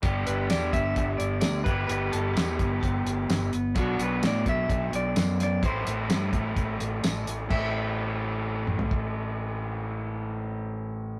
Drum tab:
CC |----------------|----------------|----------------|----------------|
HH |x-x-x-x-x-x-x-x-|x-x-x-x-x-x-x-x-|x-x-x-x-x-x-x-x-|x-x-x-x-x-x-x-x-|
TB |----x-------x---|----x-------x---|----x-------x---|----x-------x---|
SD |----o-------o---|----o-------o---|----o-------o-o-|----o-------o---|
T2 |----------------|----------------|----------------|----------------|
FT |----------------|----------------|----------------|----------------|
BD |o-----o-o-----o-|------o-o-------|o-----o-o-------|o-----o-o-------|

CC |x---------------|----------------|
HH |----------------|----------------|
TB |----------------|----------------|
SD |----------------|----------------|
T2 |----------o-----|----------------|
FT |-----------o----|----------------|
BD |o-----------o---|----------------|